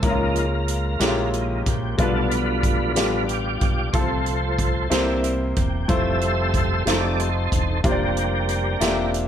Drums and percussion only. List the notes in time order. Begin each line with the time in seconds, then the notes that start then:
0.03 kick, closed hi-hat
0.36 closed hi-hat
0.68 closed hi-hat
1.00 snare, closed hi-hat
1.34 closed hi-hat
1.66 kick, closed hi-hat
1.99 kick, closed hi-hat
2.31 closed hi-hat
2.63 kick, closed hi-hat
2.96 snare, closed hi-hat
3.29 closed hi-hat
3.61 kick, closed hi-hat
3.93 kick, closed hi-hat
4.26 closed hi-hat
4.59 kick, closed hi-hat
4.91 snare, closed hi-hat
5.24 closed hi-hat
5.56 kick, closed hi-hat
5.89 kick, closed hi-hat
6.21 closed hi-hat
6.54 kick, closed hi-hat
6.87 snare, closed hi-hat
7.20 closed hi-hat
7.52 kick, closed hi-hat
7.84 kick, closed hi-hat
8.17 closed hi-hat
8.49 closed hi-hat
8.81 snare, closed hi-hat
9.14 closed hi-hat